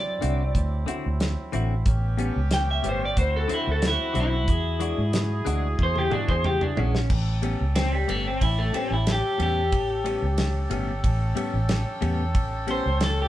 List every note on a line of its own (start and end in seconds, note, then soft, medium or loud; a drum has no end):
0.00 0.17 F#2 medium
0.00 1.82 F#3 medium
0.00 1.83 C4 medium
0.00 1.84 E4 medium
0.00 1.17 D5 loud
0.21 0.52 C2 medium
0.21 0.42 D3 medium
0.21 0.42 C4 medium
0.21 0.42 E4 medium
0.21 0.43 F#4 medium
0.21 closed hi-hat medium
0.55 0.84 D2 loud
0.55 kick medium
0.55 closed hi-hat medium
0.86 1.07 D3 medium
0.86 1.08 C4 medium
0.86 1.08 E4 medium
0.86 1.08 F#4 loud
0.86 closed hi-hat medium
1.06 1.35 D2 loud
1.20 snare loud
1.20 closed hi-hat medium
1.52 1.83 A1 loud
1.52 1.73 D3 medium
1.52 1.73 C4 loud
1.52 1.74 E4 loud
1.52 1.74 F#4 medium
1.52 closed hi-hat soft
1.86 2.30 A1 loud
1.86 3.16 B3 medium
1.86 3.16 C#4 medium
1.86 3.16 G4 medium
1.86 kick loud
1.86 closed hi-hat medium
2.17 2.38 A2 medium
2.17 2.39 G3 medium
2.17 2.39 B3 loud
2.17 2.39 C#4 medium
2.17 closed hi-hat medium
2.36 2.79 C#2 medium
2.51 2.69 G5 loud
2.51 snare loud
2.51 closed hi-hat medium
2.71 2.85 E5 medium
2.83 3.14 G1 medium
2.83 3.04 A2 medium
2.83 3.04 G3 medium
2.83 3.05 B3 medium
2.83 3.05 C#4 medium
2.83 closed hi-hat medium
2.89 3.03 C5 medium
3.05 3.18 D5 medium
3.17 3.46 D2 loud
3.17 4.47 C4 medium
3.17 4.47 E4 medium
3.17 4.47 F#4 medium
3.17 3.34 C5 loud
3.17 kick medium
3.17 closed hi-hat medium
3.37 3.51 A4 loud
3.48 3.69 D3 medium
3.48 3.70 F#3 medium
3.48 3.70 C4 medium
3.48 3.70 E4 medium
3.48 muted fingered electric bass stroke soft
3.48 closed hi-hat medium
3.54 3.68 E4 medium
3.67 3.96 D2 medium
3.71 3.85 A4 medium
3.82 snare loud
3.82 closed hi-hat medium
3.88 4.17 E4 loud
4.13 4.48 B1 medium
4.13 4.35 D3 medium
4.13 4.35 F#3 medium
4.13 4.35 C4 medium
4.13 4.36 E4 medium
4.13 closed hi-hat medium
4.20 5.45 E4 loud
4.48 4.92 E2 loud
4.48 6.93 E4 medium
4.48 6.93 F#4 medium
4.48 6.93 G#4 medium
4.48 kick loud
4.48 closed hi-hat medium
4.80 5.00 E3 medium
4.80 5.01 G#3 medium
4.80 5.01 D4 medium
4.80 5.01 F#4 medium
4.80 closed hi-hat medium
4.98 5.41 G#2 medium
5.13 snare loud
5.13 closed hi-hat medium
5.45 5.76 D2 medium
5.45 5.66 E3 medium
5.45 5.66 G#3 medium
5.45 5.67 D4 loud
5.45 5.67 F#4 medium
5.45 closed hi-hat medium
5.79 6.08 E2 loud
5.79 kick medium
5.83 5.98 C5 loud
5.96 6.13 G4 loud
5.96 high tom medium
6.10 6.31 E3 medium
6.10 6.32 G#3 medium
6.10 6.32 D4 medium
6.10 6.29 D4 loud
6.10 6.32 F#4 medium
6.10 muted fingered electric bass stroke soft
6.10 mid tom medium
6.29 6.58 E2 medium
6.29 6.44 C5 loud
6.29 kick medium
6.44 6.62 G4 loud
6.44 mid tom medium
6.61 6.78 D4 medium
6.61 mid tom medium
6.76 7.07 A#1 loud
6.76 6.97 E3 medium
6.76 6.98 G#3 medium
6.76 7.09 C#4 loud
6.76 6.98 D4 medium
6.76 6.98 F#4 medium
6.76 floor tom medium
6.95 snare medium
7.10 7.54 A1 loud
7.10 13.28 C#4 medium
7.10 13.28 G4 medium
7.10 13.28 A4 medium
7.10 kick loud
7.10 crash medium
7.42 7.63 A2 medium
7.42 7.63 G3 medium
7.42 7.64 B3 medium
7.42 7.64 C#4 medium
7.42 ride medium
7.61 8.04 C#2 medium
7.75 7.92 C4 loud
7.75 snare loud
7.75 ride medium
7.93 8.10 G3 medium
8.07 8.38 G1 medium
8.07 8.28 A2 medium
8.07 8.29 G3 medium
8.07 8.26 A3 medium
8.07 8.29 B3 medium
8.07 8.29 C#4 medium
8.07 ride medium
8.27 8.42 C4 medium
8.41 8.71 A1 loud
8.41 8.58 E4 medium
8.41 kick medium
8.41 ride medium
8.59 8.74 A3 medium
8.73 8.94 A2 medium
8.73 8.94 G3 medium
8.73 8.95 B3 medium
8.73 8.91 C4 medium
8.73 8.95 C#4 medium
8.73 ride medium
8.91 9.20 A1 medium
8.91 9.08 E4 medium
9.07 snare loud
9.07 ride medium
9.12 9.41 G4 medium
9.38 9.73 E2 loud
9.38 9.59 A2 medium
9.38 9.60 G3 medium
9.38 9.60 B3 medium
9.38 9.60 C#4 medium
9.38 ride medium
9.43 11.34 G4 medium
9.72 10.17 A1 loud
9.72 kick medium
9.72 ride medium
10.04 10.25 A2 medium
10.04 10.25 G3 medium
10.04 10.26 B3 medium
10.04 10.26 C#4 medium
10.04 ride medium
10.22 10.66 C#2 medium
10.38 snare loud
10.38 ride medium
10.70 11.00 G1 medium
10.70 10.91 A2 medium
10.70 10.91 G3 medium
10.70 10.92 B3 medium
10.70 10.92 C#4 medium
10.70 ride medium
11.04 11.33 A1 loud
11.04 kick medium
11.04 ride medium
11.35 11.56 A2 medium
11.35 11.57 G3 loud
11.35 11.57 B3 medium
11.35 11.57 C#4 loud
11.35 ride medium
11.54 11.83 A1 medium
11.69 snare loud
11.69 ride medium
12.01 12.35 E2 loud
12.01 12.22 A2 medium
12.01 12.22 G3 medium
12.01 12.23 B3 medium
12.01 12.23 C#4 medium
12.01 ride medium
12.35 12.79 A1 loud
12.35 kick loud
12.35 ride medium
12.67 12.88 A2 medium
12.67 12.88 G3 medium
12.67 12.88 B3 medium
12.67 12.89 C#4 medium
12.67 13.01 C5 medium
12.67 ride medium
12.86 13.28 C#2 medium
13.01 13.19 A4 loud
13.01 snare loud
13.01 ride medium
13.22 13.28 G4 medium